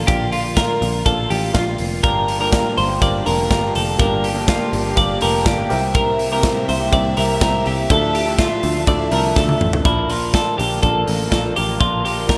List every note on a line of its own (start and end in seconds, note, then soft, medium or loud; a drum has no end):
0.00 1.99 D3 medium
0.00 2.00 F3 medium
0.00 2.00 A#3 medium
0.00 0.08 F4 medium
0.00 3.96 F4 medium
0.00 0.09 A#4 medium
0.00 0.09 D5 medium
0.00 0.09 F5 loud
0.07 0.66 A#1 loud
0.07 0.50 F4 medium
0.07 0.32 G4 loud
0.07 0.51 A#4 medium
0.07 0.51 D5 medium
0.07 0.51 F5 medium
0.07 kick loud
0.07 hi-hat pedal medium
0.07 ride medium
0.32 0.57 F4 medium
0.32 open hi-hat medium
0.57 0.99 F4 medium
0.57 1.03 A#4 medium
0.57 1.00 A#4 medium
0.57 1.00 D5 medium
0.57 1.00 F5 medium
0.57 kick loud
0.57 snare loud
0.57 hi-hat pedal medium
0.57 ride medium
0.82 1.02 A#1 loud
0.82 open hi-hat medium
1.06 1.26 A#1 loud
1.06 1.48 F4 medium
1.06 1.30 A4 medium
1.06 1.48 A#4 medium
1.06 1.48 D5 medium
1.06 1.49 F5 medium
1.06 kick loud
1.06 hi-hat pedal medium
1.06 ride medium
1.30 1.50 A1 loud
1.30 1.54 G4 medium
1.30 1.53 G5 medium
1.30 open hi-hat medium
1.54 1.75 A#1 loud
1.54 1.97 F4 medium
1.54 2.01 F4 medium
1.54 1.97 A#4 medium
1.54 1.97 D5 medium
1.54 1.97 F5 loud
1.54 kick loud
1.54 snare loud
1.54 hi-hat pedal medium
1.54 ride medium
1.78 2.00 F1 medium
1.78 open hi-hat medium
2.03 2.62 G1 loud
2.03 5.66 D3 medium
2.03 2.40 F3 medium
2.03 5.66 G3 medium
2.03 7.86 A#3 medium
2.03 2.40 A#3 medium
2.03 2.39 D4 medium
2.03 2.46 G4 medium
2.03 2.39 G4 medium
2.03 2.38 A#4 loud
2.03 2.46 A#4 medium
2.03 2.46 D5 medium
2.03 2.46 F5 medium
2.03 kick loud
2.03 hi-hat pedal medium
2.03 ride medium
2.28 open hi-hat medium
2.40 2.90 G2 medium
2.40 2.90 D3 medium
2.40 2.90 F3 medium
2.40 2.90 A#3 medium
2.40 2.88 D4 medium
2.40 2.88 G4 medium
2.40 2.75 A#4 medium
2.52 2.95 G4 medium
2.52 2.95 A#4 medium
2.52 2.95 D5 medium
2.52 2.95 F5 loud
2.52 kick loud
2.52 snare loud
2.52 hi-hat pedal medium
2.52 ride medium
2.78 2.98 G1 loud
2.78 3.02 C5 medium
2.78 open hi-hat medium
2.88 3.24 F3 medium
2.88 3.25 A#3 soft
2.88 3.25 D4 soft
2.88 3.25 G4 medium
3.00 3.22 G1 loud
3.00 3.43 G4 medium
3.00 3.44 A#4 medium
3.00 3.44 D5 medium
3.00 3.26 D5 medium
3.00 3.44 F5 medium
3.00 kick loud
3.00 hi-hat pedal medium
3.00 ride medium
3.25 3.47 F1 loud
3.25 3.62 G2 medium
3.25 3.62 D3 medium
3.25 3.62 F3 medium
3.25 3.63 A#3 medium
3.25 3.62 D4 medium
3.25 3.60 G4 medium
3.25 3.50 A#4 medium
3.25 open hi-hat medium
3.50 3.71 G1 loud
3.50 3.93 G4 medium
3.50 3.93 A#4 medium
3.50 3.75 A#4 medium
3.50 3.93 D5 medium
3.50 3.93 F5 medium
3.50 kick loud
3.50 snare loud
3.50 ride medium
3.61 3.97 F3 medium
3.61 3.98 A#3 medium
3.61 3.99 D4 medium
3.61 3.99 G4 medium
3.75 3.95 F1 medium
3.75 3.99 A4 medium
3.75 open hi-hat medium
3.98 4.58 G1 loud
3.98 4.35 F3 medium
3.98 4.35 A#3 medium
3.98 4.34 D4 medium
3.98 4.41 G4 medium
3.98 5.68 G4 medium
3.98 4.33 G4 medium
3.98 4.41 A#4 medium
3.98 4.24 A#4 loud
3.98 4.42 D5 medium
3.98 4.42 F5 medium
3.98 kick loud
3.98 hi-hat pedal medium
3.98 ride medium
4.24 4.48 G4 medium
4.24 open hi-hat medium
4.34 4.85 G2 medium
4.34 4.85 D3 medium
4.34 4.85 F3 medium
4.34 4.86 A#3 medium
4.34 4.84 D4 medium
4.34 4.83 G4 medium
4.47 4.95 F4 medium
4.47 4.90 G4 medium
4.47 4.90 A#4 medium
4.47 4.90 D5 medium
4.47 4.90 F5 medium
4.47 kick loud
4.47 snare loud
4.47 ride medium
4.73 4.93 G1 loud
4.73 open hi-hat medium
4.84 5.20 F3 soft
4.84 5.21 A#3 soft
4.84 5.21 D4 medium
4.84 5.21 G4 medium
4.96 5.17 G1 loud
4.96 5.39 G4 medium
4.96 5.39 A#4 medium
4.96 5.39 D5 medium
4.96 5.22 D5 medium
4.96 5.39 F5 medium
4.96 kick medium
4.96 hi-hat pedal medium
4.96 ride medium
5.21 5.47 F1 loud
5.21 5.58 G2 medium
5.21 5.58 D3 medium
5.21 5.58 F3 medium
5.21 5.59 A#3 medium
5.21 5.58 D4 medium
5.21 5.57 G4 medium
5.21 5.46 A#4 medium
5.21 open hi-hat medium
5.45 5.66 G1 loud
5.45 5.69 G4 medium
5.45 5.92 G4 medium
5.45 5.70 A#4 medium
5.45 5.70 D5 medium
5.45 5.71 F5 medium
5.45 kick loud
5.45 snare loud
5.45 hi-hat pedal medium
5.45 ride medium
5.58 5.70 F3 medium
5.58 5.70 A#3 medium
5.58 5.71 D4 medium
5.58 5.70 G4 medium
5.69 6.41 C2 medium
5.69 6.31 C3 medium
5.69 7.88 C3 medium
5.69 6.31 G3 medium
5.69 7.88 G3 medium
5.69 6.32 A#3 medium
5.69 6.32 E4 medium
5.69 6.33 G4 medium
5.69 6.30 G4 medium
5.69 6.34 A#4 medium
5.69 6.34 C5 medium
5.69 6.34 E5 loud
5.69 9.82 E5 medium
5.69 open hi-hat medium
5.95 6.29 A#4 loud
5.95 kick loud
5.95 hi-hat pedal medium
5.95 ride medium
6.19 open hi-hat medium
6.32 6.82 C3 medium
6.32 6.81 G3 medium
6.32 6.81 A#3 medium
6.32 6.81 E4 medium
6.32 6.79 G4 medium
6.32 6.66 A#4 medium
6.43 6.85 G4 medium
6.43 6.86 A#4 medium
6.43 6.86 C5 medium
6.43 6.86 E5 medium
6.43 kick loud
6.43 snare loud
6.43 hi-hat pedal medium
6.43 ride medium
6.69 6.89 C2 loud
6.69 6.93 C5 medium
6.69 open hi-hat medium
6.80 7.17 A#3 soft
6.80 7.17 E4 medium
6.80 7.17 G4 medium
6.92 7.13 C2 loud
6.92 7.34 G4 medium
6.92 7.34 A#4 medium
6.92 7.35 C5 medium
6.92 7.17 D5 medium
6.92 7.35 E5 medium
6.92 kick medium
6.92 hi-hat pedal medium
6.92 ride medium
7.17 7.37 C2 loud
7.17 7.54 C3 medium
7.17 7.54 G3 medium
7.17 7.54 A#3 medium
7.17 7.53 E4 medium
7.17 7.51 G4 medium
7.17 7.41 A#4 medium
7.17 open hi-hat medium
7.41 7.61 C2 loud
7.41 7.84 G4 medium
7.41 7.83 A#4 medium
7.41 7.66 A#4 medium
7.41 7.84 C5 medium
7.41 7.84 E5 medium
7.41 kick loud
7.41 snare loud
7.41 hi-hat pedal medium
7.41 ride medium
7.53 7.90 A#3 soft
7.53 7.91 E4 medium
7.53 7.90 G4 medium
7.66 7.86 C2 medium
7.66 7.91 G4 medium
7.66 open hi-hat medium
7.89 8.48 D2 loud
7.89 9.83 D3 medium
7.89 9.83 F3 medium
7.89 8.26 F3 medium
7.89 9.83 A3 medium
7.89 8.27 D4 medium
7.89 8.26 E4 medium
7.89 8.32 F4 medium
7.89 8.32 A4 medium
7.89 8.15 A4 loud
7.89 8.32 D5 medium
7.89 8.33 E5 medium
7.89 kick loud
7.89 hi-hat pedal medium
7.89 ride medium
7.93 8.25 A4 medium
8.15 8.39 G4 medium
8.15 open hi-hat medium
8.26 8.79 D3 medium
8.26 8.79 F3 medium
8.26 8.77 D4 medium
8.26 8.75 E4 medium
8.26 8.73 A4 medium
8.39 8.81 F4 medium
8.39 8.85 F4 medium
8.39 8.81 A4 medium
8.39 8.81 D5 medium
8.39 8.81 E5 medium
8.39 kick loud
8.39 snare loud
8.39 hi-hat pedal medium
8.39 ride medium
8.63 8.83 D2 loud
8.63 open hi-hat medium
8.74 9.11 D4 soft
8.74 9.12 E4 medium
8.74 9.11 A4 medium
8.87 9.08 D2 loud
8.87 9.30 F4 medium
8.87 9.30 A4 medium
8.87 9.12 D5 medium
8.87 9.30 D5 medium
8.87 9.30 E5 medium
8.87 kick loud
8.87 hi-hat pedal medium
8.87 ride medium
9.11 9.32 C2 medium
9.11 9.48 D3 medium
9.11 9.49 F3 medium
9.11 9.49 D4 medium
9.11 9.49 E4 medium
9.11 9.47 A4 medium
9.11 9.36 A#4 medium
9.11 open hi-hat medium
9.36 9.56 D2 loud
9.36 9.79 F4 medium
9.36 9.82 A4 medium
9.36 9.79 A4 medium
9.36 9.79 D5 medium
9.36 9.79 E5 loud
9.36 kick loud
9.36 snare medium
9.48 9.85 D4 medium
9.48 9.86 E4 medium
9.48 9.85 A4 medium
9.48 high tom medium
9.61 9.81 A1 medium
9.61 mid tom medium
9.73 floor tom loud
9.84 10.43 A#1 loud
9.84 10.09 A#2 medium
9.84 12.38 D3 medium
9.84 10.10 D3 medium
9.84 12.38 F3 medium
9.84 10.07 F3 medium
9.84 12.38 A#3 medium
9.84 10.08 A#3 medium
9.84 10.09 D4 medium
9.84 10.10 E4 medium
9.84 12.38 F4 medium
9.84 10.27 F4 medium
9.84 10.27 A#4 medium
9.84 10.10 A#4 medium
9.84 10.28 D5 medium
9.84 kick loud
9.84 closed hi-hat medium
10.08 10.57 F3 medium
10.08 10.58 A#3 medium
10.08 10.59 D4 medium
10.08 10.34 F4 medium
10.08 10.60 A#4 medium
10.08 open hi-hat medium
10.33 10.76 F4 medium
10.33 10.58 A4 medium
10.33 10.76 A#4 medium
10.33 10.76 D5 medium
10.33 kick loud
10.33 snare loud
10.33 closed hi-hat medium
10.57 10.79 A#1 loud
10.57 11.05 F3 medium
10.57 11.07 A#3 medium
10.57 11.08 D4 medium
10.57 10.82 G4 medium
10.57 11.09 A#4 medium
10.57 open hi-hat medium
10.82 11.03 A#1 loud
10.82 11.25 F4 medium
10.82 11.29 A4 medium
10.82 11.25 A#4 medium
10.82 11.25 D5 medium
10.82 kick medium
10.82 closed hi-hat medium
11.06 11.28 A1 medium
11.06 11.29 F3 medium
11.06 11.30 A#3 medium
11.06 11.32 D4 medium
11.06 11.32 A#4 medium
11.06 open hi-hat medium
11.30 11.52 A#1 medium
11.30 11.54 F3 medium
11.30 11.55 A#3 medium
11.30 11.56 D4 medium
11.30 11.73 F4 medium
11.30 11.56 A4 medium
11.30 11.73 A#4 medium
11.30 11.57 A#4 medium
11.30 11.74 D5 medium
11.30 kick loud
11.30 snare loud
11.30 closed hi-hat medium
11.55 11.77 A1 medium
11.55 11.79 F3 medium
11.55 11.79 A#3 medium
11.55 11.80 D4 medium
11.55 11.80 G4 medium
11.55 11.80 A#4 medium
11.55 open hi-hat medium
11.79 12.38 A#1 loud
11.79 12.04 A#2 medium
11.79 12.04 D3 medium
11.79 12.02 F3 medium
11.79 12.03 A#3 medium
11.79 12.04 D4 medium
11.79 12.22 F4 medium
11.79 12.05 F4 loud
11.79 12.22 A#4 medium
11.79 12.05 A#4 medium
11.79 12.22 D5 medium
11.79 kick loud
11.79 closed hi-hat medium
12.03 12.38 F3 medium
12.03 12.38 A#3 medium
12.03 12.38 D4 medium
12.03 12.29 G4 medium
12.03 12.38 A#4 medium
12.03 open hi-hat medium
12.27 12.38 F4 medium
12.27 12.38 A#4 medium
12.27 12.38 D5 medium
12.27 kick loud
12.27 snare loud
12.27 closed hi-hat medium